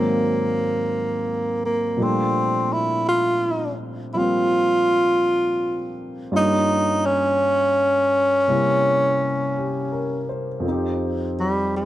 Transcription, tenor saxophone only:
0.00 1.64 A#3 medium
1.65 2.04 A#3 medium
2.03 2.74 C4 medium
2.73 3.08 E4 medium
3.09 3.75 F4 medium
4.14 4.19 E4 medium
4.18 5.97 F4 medium
6.37 7.07 D#4 medium
7.05 10.28 C#4 medium
11.40 11.72 G3 medium
11.77 11.85 G#3 medium

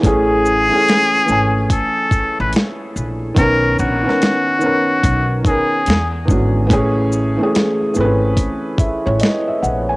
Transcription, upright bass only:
0.04 0.68 A1 loud
1.29 1.67 G#1 medium
2.40 2.53 A1 loud
2.96 3.34 A#1 medium
3.37 3.75 B1 loud
3.79 4.04 A#1 loud
5.04 5.42 B1 loud
5.88 6.30 E2 loud
6.29 6.67 G#1 medium
6.71 7.35 A1 loud
7.96 8.34 G#1 medium
9.07 9.20 A1 loud
9.63 9.97 A#1 medium

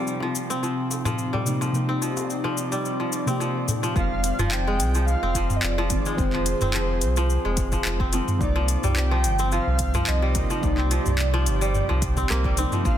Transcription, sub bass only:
3.96 4.32 F1 loud
4.38 4.81 F1 medium
4.79 5.15 C2 loud
5.22 5.57 F1 loud
5.63 5.99 F1 medium
6.18 6.54 F1 medium
6.61 7.03 F1 medium
7.02 7.38 C2 loud
7.44 7.79 F1 loud
7.85 8.21 F1 medium
8.41 8.77 C2 medium
8.84 9.25 C2 medium
9.24 9.60 G1 loud
9.67 10.02 C2 loud
10.08 10.43 C2 medium
10.63 10.99 C2 medium
11.06 11.48 C2 medium
11.46 11.82 G1 loud
11.89 12.24 C2 loud
12.30 12.66 C2 medium
12.85 12.98 A#1 loud

